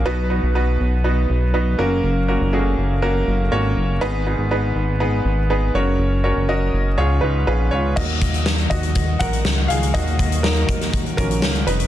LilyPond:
<<
  \new Staff \with { instrumentName = "Upright piano" } { \time 4/4 \key dis \minor \tempo 4 = 121 << { r1 | r1 | r1 | r2 r8 <dis' b'>4 <eis' cis''>8 |
<fis' dis''>4. <fis' dis''>4 <ais' fis''>4 <gis' eis''>8 | <fis' dis''>4 <dis' ais'>4. <cis' ais'>4 <dis' b'>8 | } \\ { <b dis' fis' b'>8 <b dis' fis' b'>8 <b dis' fis' b'>4 <b dis' fis' b'>4 <b dis' fis' b'>8 <ais cis' fis' ais'>8~ | <ais cis' fis' ais'>8 <ais cis' fis' ais'>8 <a ais cis' fis' gis'>4 <ais cis' fis' ais'>4 <ais cis' fis' cis''>4 | <b dis' gis' b'>8 <b dis' gis' b'>8 <b dis' gis' b'>4 <b dis' gis' b'>4 <b dis' gis' b'>8 <cis' fis' ais' cis''>8~ | <cis' fis' ais' cis''>8 <cis' fis' ais' cis''>8 <cis' fis' ais' dis''>4 <cis' eis' gis' cis''>4 <cis' eis' gis' b'>4 |
r1 | r1 | } >> }
  \new Staff \with { instrumentName = "Upright piano" } { \clef bass \time 4/4 \key dis \minor <b, fis>4. r2 cis8~ | cis4 r2. | <gis, dis>4. r2 cis8~ | cis4 r4 gis,4. r8 |
<dis fis ais>4. r2 r8 | <dis fis ais>2~ <dis fis ais>8 <dis fis ais>8 r4 | }
  \new Staff \with { instrumentName = "String section" } { \time 4/4 \key dis \minor r1 | r1 | r1 | r1 |
<dis fis'>1~ | <dis fis'>1 | }
  \new Staff \with { instrumentName = "Analog synth bass" } { \clef bass \time 4/4 \key dis \minor b,,8. b,,8. b,,4 b,,4 fis,,8 | fis,,8. fis,,8. fis,,4 fis,,8 gis,,8 fis,,8 | gis,,8. gis,,8. gis,,4 gis,,4 fis,,8 | fis,,8. fis,,8. fis,,8 cis,8 cis,8 ais,,8 cis,8 |
dis,4. dis,4 ais,,8 cis,8 cis,8 | dis,4. dis,4 ais,,8 cis,8 eis,,8 | }
  \new DrumStaff \with { instrumentName = "Drums" } \drummode { \time 4/4 r4 r4 r4 r4 | r4 r4 r4 r4 | r4 r4 r4 r4 | r4 r4 r4 r4 |
<cymc bd>8 <hh bd>16 hh16 sn16 hh16 <hh bd>16 hh16 <hh bd>8 <hh bd>16 hh16 sn8 hh16 hh16 | <hh bd>16 hh16 <hh bd>16 hh16 sn16 hh16 <hh bd>16 <hh sn>16 <hh bd>16 hh16 <hh bd>16 hh16 sn16 hh16 hh16 hh16 | }
>>